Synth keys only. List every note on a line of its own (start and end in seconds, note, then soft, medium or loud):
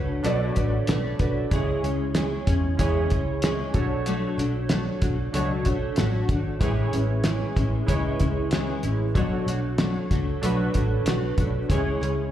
0.00 0.23 D4 medium
0.00 0.23 F#4 medium
0.00 0.24 A4 medium
0.00 1.53 C#5 medium
0.23 1.21 D4 medium
0.23 1.21 F#4 medium
0.23 1.22 A4 medium
0.23 1.22 D5 medium
1.51 2.49 C#4 medium
1.51 2.49 E4 medium
1.51 2.50 G#4 medium
1.51 2.50 C#5 medium
2.77 3.73 C#4 medium
2.77 3.74 E4 medium
2.77 3.74 G#4 medium
2.77 3.74 C#5 loud
3.73 4.76 D4 medium
3.73 4.76 F#4 medium
3.73 4.76 A4 medium
3.73 4.77 C#5 medium
5.32 6.30 D4 medium
5.32 6.31 F#4 medium
5.32 6.31 A4 medium
5.32 6.32 C#5 medium
6.60 7.58 E4 medium
6.60 7.58 G#4 medium
6.60 7.58 B4 medium
6.60 7.59 C#5 medium
7.86 8.85 E4 medium
7.86 8.85 G#4 medium
7.86 8.85 B4 medium
7.86 8.86 C#5 medium
9.14 10.12 D4 medium
9.14 10.13 F#4 medium
9.14 10.13 A4 medium
9.14 10.13 C#5 medium
10.41 11.39 D4 medium
10.41 11.40 F#4 medium
10.41 11.40 A4 medium
10.41 11.41 B4 medium
11.68 12.31 C#4 medium
11.68 12.31 E4 medium
11.68 12.31 G#4 medium
11.68 12.31 C#5 loud